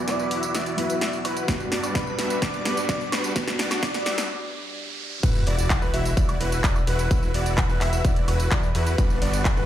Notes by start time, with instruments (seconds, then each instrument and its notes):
Already playing: analog synth pad E3 B3 F#4, felt piano F#3 B3 E4 F#4, supersaw synth E4 F#4 D5, riser
0.08 digital synth lead D5, snare, closed hi-hat, tambourine
0.19 supersaw synth E4 F#4 B4, tambourine
0.31 supersaw synth E4 F#4 E5, open hi-hat
0.43 closed hi-hat, tambourine
0.54 supersaw synth E4 F#4 D5, digital synth lead E5, snare, closed hi-hat, tambourine
0.66 closed hi-hat, tambourine
0.77 felt piano F#3 B3 E4 F#4, supersaw synth E4 F#4 B4, open hi-hat
0.90 closed hi-hat, tambourine
1.01 supersaw synth E4 F#4 D5, digital synth lead E5, snare, closed hi-hat, tambourine
1.13 tambourine
1.25 supersaw synth E4 F#4 B4, digital synth lead B4, open hi-hat, high woodblock
1.37 closed hi-hat, tambourine
1.47 felt piano G2 G3 B3 D4 F#4, analog synth pad G3 B4, supersaw synth G3 B3 D4 F#4 B4, kick, snare, closed hi-hat, tambourine
1.60 tambourine
1.72 supersaw synth G3 B3 D4 F#4 D5, snare, open hi-hat
1.83 closed hi-hat, tambourine, high woodblock
1.95 digital synth lead B4, kick, snare, closed hi-hat, tambourine
2.07 supersaw synth G3 B3 D4 F#4 B4, tambourine
2.19 supersaw synth G3 B3 D4 F#4 E5, snare, open hi-hat
2.30 closed hi-hat, tambourine
2.42 supersaw synth G3 B3 D4 F#4, digital synth lead D5, kick, snare, closed hi-hat, tambourine
2.54 closed hi-hat, tambourine
2.64 felt piano G2 G3 B3 D4 F#4, supersaw synth G3 B3 D4 F#4 B4, snare, open hi-hat
2.77 closed hi-hat, tambourine
2.89 supersaw synth G3 B3 D4 F#4 D5, digital synth lead D5, kick, snare, closed hi-hat, tambourine
3.01 tambourine
3.12 supersaw synth G3 B3 D4 F#4 B4, digital synth lead B4, snare, open hi-hat, high woodblock
3.24 closed hi-hat, tambourine
3.35 felt piano G2 G3 B3 D4 F#4, supersaw synth G3 D4 F#4, kick, snare, closed hi-hat, tambourine
3.48 snare, tambourine
3.59 supersaw synth G3 B3 D4 F#4 D5, snare, open hi-hat
3.71 snare, closed hi-hat, tambourine, high woodblock
3.83 digital synth lead D5, kick, snare, closed hi-hat, tambourine
3.94 supersaw synth G3 B3 D4 F#4 B4, snare
4.06 supersaw synth G3 B3 D4 F#4 E5, snare, open hi-hat
4.18 snare, closed hi-hat, tambourine
5.23 analog synth bass E1, supersaw synth E4 F#4 B4, analog synth pad B4 F#5 E6, grand piano B4, kick, closed hi-hat, crash, tambourine, sub drop
5.35 tambourine
5.47 analog synth bass E1, supersaw synth E4 F#4 D5, grand piano D5, open hi-hat
5.59 closed hi-hat, tambourine
5.70 kick, clap, closed hi-hat, tambourine
5.82 analog synth bass E1, supersaw synth E4 F#4 B4, grand piano B4, tambourine
5.94 analog synth bass E1, supersaw synth E4 F#4 E5, grand piano E5, open hi-hat
6.05 closed hi-hat, tambourine
6.17 analog synth bass E1, supersaw synth E4 F#4 D5, grand piano D5, kick, closed hi-hat, tambourine
6.29 closed hi-hat, tambourine, high woodblock
6.40 analog synth bass E1, supersaw synth E4 F#4 B4, grand piano B4, open hi-hat
6.52 closed hi-hat, tambourine
6.64 analog synth bass E1, supersaw synth E4 F#4 D5, grand piano D5, kick, clap, closed hi-hat, tambourine
6.76 tambourine, high woodblock
6.87 analog synth bass E1, supersaw synth E4 F#4 B4, grand piano B4, open hi-hat
6.99 closed hi-hat, tambourine
7.11 analog synth bass E1, supersaw synth E4 F#4 B4, grand piano B4, kick, closed hi-hat, tambourine
7.23 tambourine
7.34 analog synth bass E1, supersaw synth E4 F#4 D5, grand piano D5, open hi-hat
7.46 closed hi-hat, tambourine
7.58 kick, clap, closed hi-hat, tambourine
7.69 analog synth bass E1, supersaw synth E4 F#4 B4, grand piano B4, tambourine
7.81 analog synth bass E1, supersaw synth E4 F#4 E5, grand piano E5, clap, open hi-hat
7.93 closed hi-hat, tambourine
8.04 analog synth bass E1, supersaw synth E4 F#4 D5, grand piano D5, kick, closed hi-hat, tambourine
8.16 closed hi-hat, tambourine
8.28 analog synth bass E1, supersaw synth E4 F#4 B4, grand piano B4, open hi-hat, high woodblock
8.40 closed hi-hat, tambourine
8.51 analog synth bass E2, supersaw synth E4 F#4 D5, grand piano D5, kick, clap, closed hi-hat, tambourine
8.63 tambourine
8.75 analog synth bass E2, supersaw synth E4 F#4 B4, grand piano B4, open hi-hat
8.87 closed hi-hat, tambourine
8.98 analog synth bass G1, supersaw synth G3 B3 D4 F#4 B4, grand piano B4, analog synth pad F#5 F#6, kick, closed hi-hat, tambourine
9.10 tambourine
9.22 analog synth bass G1, supersaw synth G3 B3 D4 F#4 D5, grand piano D5, open hi-hat
9.33 closed hi-hat, tambourine
9.45 kick, clap, closed hi-hat, tambourine
9.57 analog synth bass G1, supersaw synth G3 B3 D4 F#4 B4, grand piano B4, tambourine